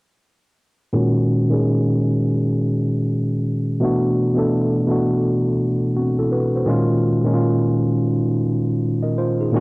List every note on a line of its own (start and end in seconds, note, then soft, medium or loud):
0.93 1.37 A#2 loud
0.93 1.37 D#3 medium
0.93 1.38 G#3 medium
0.93 1.38 C#4 medium
0.93 1.39 F#4 loud
1.49 2.61 A#2 medium
1.49 2.61 D#3 medium
1.49 2.62 G#3 medium
1.49 2.62 C#4 medium
1.53 2.63 G#4 medium
3.80 4.23 B2 loud
3.80 4.24 E3 medium
3.80 4.24 A3 medium
3.80 4.25 D4 medium
3.84 4.25 F#4 loud
4.35 4.77 B2 medium
4.35 4.77 E3 medium
4.35 4.78 A3 medium
4.35 4.78 D4 medium
4.35 4.79 A4 medium
4.87 5.46 B2 medium
4.87 5.47 E3 medium
4.87 5.47 A3 medium
4.87 5.48 D4 medium
4.87 5.48 F#4 medium
5.96 6.16 C4 medium
5.96 6.16 F#4 medium
6.19 6.32 E4 medium
6.19 6.31 A4 medium
6.32 6.52 F#4 medium
6.32 6.52 B4 medium
6.56 6.88 F#4 soft
6.56 6.88 C5 soft
6.65 7.09 A#2 medium
6.65 7.09 D#3 medium
6.65 7.10 G#3 medium
6.65 7.10 C#4 medium
6.69 7.11 F4 loud
7.23 8.34 A#2 medium
7.23 8.34 D#3 medium
7.23 8.35 G#3 medium
7.23 8.35 C#4 medium
7.27 7.31 D#4 medium
7.34 8.39 F4 medium
9.03 9.16 A#4 soft
9.03 9.16 D#5 soft
9.18 9.38 F4 medium
9.18 9.38 C5 medium
9.41 9.60 D#4 soft
9.41 9.60 G#4 soft
9.52 9.60 A#2 loud
9.52 9.60 D#3 medium
9.52 9.60 G#3 medium
9.52 9.60 C#4 medium
9.56 9.60 F#4 loud